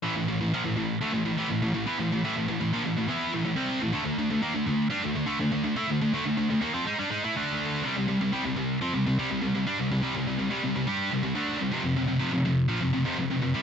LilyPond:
\new Staff \with { instrumentName = "Distorted electric guitar" } { \clef bass \time 4/4 \key a \phrygian \tempo 4 = 123 <a, e>16 <a, e>16 <a, e>16 <a, e>16 <bes, f>16 <a, e>16 <a, e>8 <d a>16 <a, e>16 <a, e>16 <a, e>16 <a, e>16 <a, e>16 <a, e>16 <e b>16 | <a, e>16 <a, e>16 <a, e>16 <a, e>16 <a, e>16 <a, e>16 <bes, f>16 <a, e>16 <a, e>16 <e b e'>8 <a, e>16 <a, e>16 <c g c'>8 <a, e>16 | <d a>16 <d a>16 <d a>16 <d a>16 <dis bes>16 <d a>16 <d a>8 <g d'>16 <d a>16 <d a>16 <d a>16 <d a>16 <d a>16 <d a>16 <a e'>16 | <d a>16 <d a>16 <d a>16 <d a>16 <d a>16 <d a>16 <dis bes>16 <f c'>16 <gis dis'>16 <g d'>16 <gis dis'>16 <a e'>16 <d a d'>4 |
<c g>16 <c g>16 <c g>16 <c g>16 <c g>16 <c g>16 <c g>8 <f c'>16 <c g>16 <c g>16 <c g>16 <c g>16 <c g>16 <c g>16 <g d'>16 | <c g>16 <c g>16 <c g>16 <c g>16 <c g>16 <c g>16 <c g>16 <c g>16 <c g>16 <g d' g'>8 <c g>16 <c g>16 <d a d'>8 <c g>16 | <f, c>16 <f, c>16 <f, c>16 <f, c>16 <f, c>16 <f, c>16 <f, c>8 <bes, f>16 <f, c>16 <f, c>16 <f, c>16 <f, c>16 <f, c>16 <f, c>16 <c g>16 | }